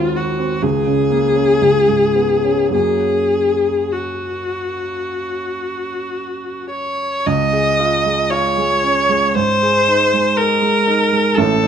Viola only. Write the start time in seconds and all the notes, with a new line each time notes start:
Already playing: F4
0.16 F#4
0.62 G#4
2.74 G#4
3.93 F#4
6.71 C#5
7.26 D#5
8.30 C#5
9.34 C5
10.37 A#4
11.36 A4